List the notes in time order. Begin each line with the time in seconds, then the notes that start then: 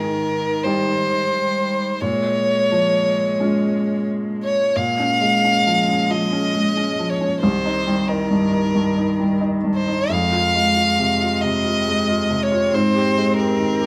Already playing: G#2 D#3 A#4
0.00 D#3
0.64 G3 D#4 G4 C5
1.35 G3
2.00 A#2 G#3 C#5
2.72 F3
3.40 G#3 C#4 F4
4.43 C#5
4.76 A#2 G#3 F5
5.00 C#4
5.21 G#3
5.44 C#4
5.67 F3
5.88 C#4
6.10 F3 D#5
6.32 C#4
6.54 G#3
6.77 C#4
6.99 F3
7.09 C#5
7.21 C#4
7.41 C2 D#3 C5
7.65 D#4
7.87 G3
8.07 D#4 A#4
8.31 G2
8.53 D#4
8.75 G2
8.98 D#4
9.20 G3
9.41 D#4
9.64 G2
9.75 C5
9.87 D#4
10.10 F2 G#3 F5
10.32 F4
10.55 G#3
10.77 F4
10.99 C3
11.21 F4
11.41 C3 D#5
11.65 F4
11.88 G#3
12.09 F4
12.30 C3
12.43 C#5
12.52 F4
12.73 G#2 C4 C5
12.95 G4
13.18 G#3
13.38 G4 A#4
13.59 D#3
13.81 G4